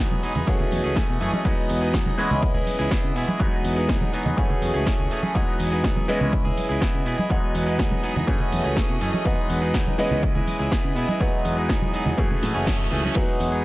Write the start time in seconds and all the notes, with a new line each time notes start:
Already playing: E3 G#3 B3 D#4 F#4 D#5 D#6
0.00 F#3 B3 D#4 G#4
0.11 high conga, low conga
0.22 F#3 B3 D#4 G#4, muted fingered electric bass stroke, open hi-hat, tambourine
0.35 E2 B3 D#4 G#4, tambourine, low conga
0.47 F#2 E3 A3 C#4 F#4 G#4, kick, tambourine
0.59 A3 C#4 G#4, low conga
0.71 E2, open hi-hat, tambourine, high conga
0.84 C#2 A3 C#4 G#4, tambourine
0.96 E3 A3 C#4 G#4, kick, snare
1.09 B2
1.20 F#2 E3 A3 C#4 G#4, open hi-hat, tambourine
1.33 A3 C#4 G#4, tambourine, high conga
1.45 E2 E3 F#3 G#3 B3 D#4 F#4 G#4, kick, tambourine
1.69 E2, open hi-hat, tambourine
1.81 B3 D#4 G#4, tambourine
1.94 F#3 B3 D#4 G#4, kick, snare
2.06 high conga, low conga
2.18 E3 G#3 B3 C#4 E4 G#4 D#5, muted fingered electric bass stroke, open hi-hat, tambourine
2.30 C#2 E4 G#4, tambourine, low conga
2.43 kick, tambourine
2.54 E4 G#4, low conga
2.67 open hi-hat, tambourine, high conga
2.79 C#2 E4 G#4, tambourine
2.91 B3 E4 G#4, kick, snare
3.04 C#3
3.15 B2 B3 E4 G#4, open hi-hat, tambourine
3.28 E4 G#4, tambourine, high conga
3.40 E2 E3 F#3 G#3 B3 D#4 F#4, kick
3.53 muted fingered electric bass stroke
3.65 E2, open hi-hat, tambourine
3.77 B3 D#4 G#4
3.89 F#3 B3 D#4 G#4, kick, snare, tambourine
4.01 high conga, low conga
4.13 F#3 B3 D#4 G#4, muted fingered electric bass stroke, open hi-hat, tambourine
4.26 E2, tambourine, low conga
4.37 F#2 E3 A3 C#4 F#4 G#4, kick, tambourine
4.50 A3 C#4 G#4, muted fingered electric bass stroke, low conga
4.62 E2, open hi-hat, tambourine, high conga
4.74 C#2 A3 C#4 G#4, tambourine
4.86 E3 A3 C#4 G#4, kick, snare
4.99 C#2
5.10 E3 A3 C#4 G#4, open hi-hat, tambourine
5.23 A3 C#4 G#4, tambourine, high conga
5.35 E2 E3 F#3 G#3 B3 D#4 F#4 G#4 D#5 D#6, kick, tambourine
5.60 E2, open hi-hat, tambourine
5.72 B3 D#4 G#4, tambourine
5.84 F#3 B3 D#4 G#4, kick, snare, tambourine
5.96 high conga, low conga
6.08 E3 G#3 B3 C#4 E4 G#4 D#5, muted fingered electric bass stroke, open hi-hat, tambourine
6.21 C#2 E4 G#4, tambourine, low conga
6.33 kick, tambourine
6.45 E4 G#4, low conga
6.57 open hi-hat, tambourine, high conga
6.69 C#2 E4 G#4, tambourine
6.81 B3 E4, kick, snare, tambourine
6.94 C#3
7.05 B2 B3 E4 G#4, open hi-hat, tambourine
7.18 E4 G#4, tambourine, high conga
7.30 E2 E3 F#3 G#3 B3 D#4 F#4 G#4, kick, tambourine
7.43 muted fingered electric bass stroke
7.55 E2, open hi-hat, tambourine
7.67 B3 D#4 G#4
7.79 F#3 B3 D#4 G#4, kick, snare
7.91 high conga, low conga
8.03 F#3 B3 D#4 G#4, muted fingered electric bass stroke, open hi-hat, tambourine
8.15 E2 B3 D#4 G#4, tambourine, low conga
8.27 F#2 E3 A3 C#4 F#4 G#4, kick, tambourine
8.40 A3 C#4 G#4, muted fingered electric bass stroke, low conga
8.52 E2, open hi-hat, tambourine, high conga
8.64 C#2 A3 C#4 G#4, tambourine
8.76 E3 A3 C#4 G#4, kick, snare
8.89 B2
9.00 F#2 E3 A3 C#4 G#4, open hi-hat, tambourine
9.13 A3 C#4 G#4, tambourine, high conga
9.25 E2 E3 F#3 G#3 B3 D#4 F#4 G#4, kick, tambourine
9.50 E2, open hi-hat, tambourine
9.62 B3 D#4 G#4, tambourine
9.74 F#3 B3 D#4 G#4, kick, snare
9.87 high conga, low conga
9.98 E3 G#3 B3 C#4 E4 G#4 D#5, muted fingered electric bass stroke, open hi-hat, tambourine
10.11 C#2, tambourine, low conga
10.23 kick, tambourine
10.35 E4 G#4, low conga
10.47 open hi-hat, tambourine, high conga
10.59 C#2 E4 G#4
10.71 B3 E4 G#4, kick, snare, tambourine
10.84 C#3
10.96 B2 B3 E4 G#4, open hi-hat, tambourine
11.08 E4 G#4, tambourine, high conga
11.20 E2 E3 F#3 G#3 B3 D#4 F#4 G#4, kick, tambourine
11.33 tambourine
11.45 E2, open hi-hat, tambourine
11.57 B3 D#4 G#4, tambourine
11.69 F#3 B3 D#4 G#4, kick, snare, tambourine
11.82 tambourine, high conga, low conga
11.93 F#3 B3 D#4 G#4, muted fingered electric bass stroke, open hi-hat, tambourine
12.06 E2, tambourine, low conga
12.17 F#2 E3 A3 C#4 F#4 G#4, kick, tambourine, reverse cymbal
12.30 A3 C#4 G#4, tambourine, low conga
12.43 A2, snare, open hi-hat, tambourine, high conga
12.54 F#1 A3 C#4 G#4, tambourine
12.67 E3 A3 G#4, kick, snare, tambourine
12.79 tambourine
12.91 C#2 E3 A3 C#4 G#4, open hi-hat, tambourine
13.03 A3 C#4 G#4, tambourine, high conga
13.15 E2 E3 F#3 G#3 B3 D#4 F#4 G#4 D#5 D#6, kick, crash
13.40 E2, open hi-hat, tambourine
13.52 B3 D#4 G#4, tambourine